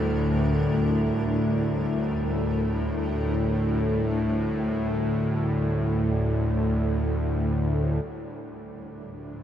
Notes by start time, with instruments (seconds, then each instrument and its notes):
Already playing: synth drone D2 A2, ambient pad D2 G3 D4 A#4
8.04 synth drone D2 A2, ambient pad A2
8.37 ambient pad F3